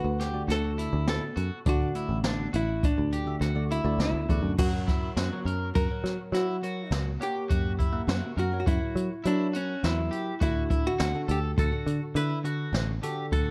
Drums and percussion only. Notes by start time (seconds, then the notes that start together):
0.20 snare, closed hi-hat
0.50 snare, closed hi-hat
0.79 closed hi-hat
1.08 snare, closed hi-hat
1.37 closed hi-hat
1.66 kick, closed hi-hat
1.95 closed hi-hat
2.24 snare, closed hi-hat
2.53 closed hi-hat
2.83 kick, closed hi-hat
3.12 closed hi-hat
3.42 snare, closed hi-hat
3.71 closed hi-hat
4.00 snare, closed hi-hat
4.29 kick, closed hi-hat
4.58 kick, crash
4.88 kick, snare, closed hi-hat
5.17 snare, closed hi-hat
5.47 closed hi-hat
5.76 kick, closed hi-hat
6.05 snare, closed hi-hat
6.34 snare, closed hi-hat
6.63 closed hi-hat
6.92 snare, closed hi-hat
7.22 closed hi-hat
7.50 kick, closed hi-hat
7.80 kick, closed hi-hat
8.09 snare, closed hi-hat
8.38 closed hi-hat
8.67 kick, closed hi-hat
8.96 closed hi-hat
9.25 closed hi-hat
9.54 closed hi-hat
9.84 snare, closed hi-hat
10.12 closed hi-hat
10.41 kick, closed hi-hat
10.70 kick, closed hi-hat
11.00 snare, closed hi-hat
11.29 closed hi-hat
11.58 kick, closed hi-hat
11.87 closed hi-hat
12.16 closed hi-hat
12.45 closed hi-hat
12.74 snare, closed hi-hat
13.03 closed hi-hat
13.33 kick, closed hi-hat